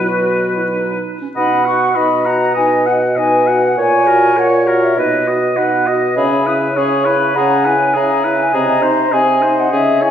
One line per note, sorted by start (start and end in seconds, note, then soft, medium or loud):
0.00 1.04 B2 soft
0.00 1.00 F#3 soft
0.00 1.00 B4 soft
0.00 1.04 B4 medium
0.08 0.55 F#4 soft
0.56 0.63 E4 soft
0.72 1.19 D#4 soft
1.21 1.28 C#4 soft
1.35 1.90 B2 medium
1.35 1.68 D#4 soft
1.35 1.67 D#5 soft
1.35 1.92 F#5 medium
1.35 1.64 B5 medium
1.65 1.98 F#4 soft
1.65 1.97 F#5 soft
1.65 1.96 C#6 medium
1.95 2.49 B2 soft
1.95 2.28 D#4 soft
1.95 2.27 D#5 soft
1.95 3.19 D#5 medium
1.95 2.27 B5 medium
2.25 2.57 F#4 soft
2.25 2.54 F#5 soft
2.25 2.55 A#5 medium
2.54 3.10 B2 soft
2.54 2.90 D#4 soft
2.54 2.88 D#5 soft
2.54 2.85 G#5 medium
2.85 3.20 F#4 soft
2.85 2.92 F#5 medium
2.85 3.18 F#5 soft
3.16 3.70 B2 soft
3.16 3.50 D#4 soft
3.16 3.61 B4 soft
3.16 3.49 D#5 soft
3.16 3.61 G#5 medium
3.47 3.78 F#4 soft
3.47 3.77 F#5 soft
3.64 3.70 F#5 medium
3.78 4.30 A#2 medium
3.78 4.10 A#4 soft
3.78 4.99 C#5 medium
3.78 4.08 C#5 soft
3.78 4.40 G#5 medium
4.07 4.39 F#4 soft
4.07 4.38 A#4 soft
4.37 4.90 A#2 soft
4.37 4.68 A#4 soft
4.37 4.69 C#5 soft
4.37 4.84 F#5 medium
4.67 4.97 F#4 soft
4.67 4.97 A#4 soft
4.83 4.99 E5 medium
4.97 5.50 B2 soft
4.97 5.29 D#4 soft
4.97 5.29 B4 soft
4.97 5.58 D#5 medium
4.97 5.87 D#5 medium
5.28 5.60 F#4 soft
5.28 5.58 D#5 soft
5.57 6.10 B2 soft
5.57 5.90 D#4 soft
5.57 5.88 B4 soft
5.57 5.89 F#5 soft
5.86 6.17 F#4 soft
5.86 6.16 D#5 soft
5.86 6.17 D#5 medium
6.16 6.69 C#3 medium
6.16 6.49 C#4 soft
6.16 6.48 G#4 soft
6.16 6.75 E5 medium
6.16 6.44 B5 medium
6.47 6.79 E4 soft
6.47 6.78 B4 soft
6.47 6.53 D#6 medium
6.75 7.29 C#3 soft
6.75 7.08 C#4 soft
6.75 7.07 G#4 soft
6.75 7.37 C#5 medium
6.75 7.07 C#6 medium
7.05 7.36 E4 soft
7.05 7.35 B4 soft
7.05 7.37 B5 medium
7.35 7.80 C#3 medium
7.35 7.68 C#4 soft
7.35 7.67 G#4 soft
7.35 7.74 F#5 medium
7.35 7.67 A#5 medium
7.65 7.98 E4 soft
7.65 7.96 B4 soft
7.65 7.98 G#5 medium
7.95 8.47 C#3 medium
7.95 8.27 C#4 soft
7.95 8.26 G#4 soft
7.95 8.56 E5 soft
7.95 8.40 A#5 medium
8.24 8.54 E4 soft
8.24 8.53 B4 soft
8.41 8.56 G#5 medium
8.53 9.06 C3 medium
8.53 8.85 C4 medium
8.53 8.84 G#4 soft
8.53 8.84 D#5 medium
8.53 9.15 A#5 medium
8.83 9.15 D#4 soft
8.83 9.14 C5 soft
8.83 9.14 C5 medium
9.12 9.65 C3 medium
9.12 9.45 C4 soft
9.12 9.44 G#4 soft
9.12 10.11 D#5 medium
9.12 9.61 G#5 medium
9.42 9.71 D#4 soft
9.42 9.71 C5 soft
9.59 9.73 F#5 medium
9.72 10.11 C#3 medium
9.72 10.04 C#4 medium
9.72 10.03 G#4 soft
9.72 10.02 E5 medium
10.02 10.11 E4 soft
10.02 10.11 C#5 soft
10.02 10.11 G#5 medium